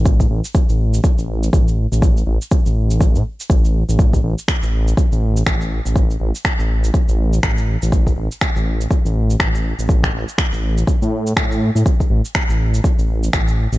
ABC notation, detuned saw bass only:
X:1
M:4/4
L:1/16
Q:"Swing 16ths" 1/4=122
K:C
V:1 name="Detuned saw bass" clef=bass
A,,,2 A,,, z2 A,,,3 z A,,,3 A,,,3 A,,,- | A,,,2 A,,, z2 A,,,4 A,, z2 A,,,3 A,,,- | A,,,2 A,,, z2 A,,,3 z A,,,3 A,,,3 A,,,- | A,,,2 A,,, z2 A,,,3 z A,,,3 A,,,3 A,,,- |
A,,,2 A,,, z2 A,,,3 z A,,,3 A,,,3 A,,,- | A,,,2 A,,, z2 A,,,3 z A,,3 A,,3 A,, | z2 A,,, z2 A,,,3 z A,,,3 A,,,3 A,,, |]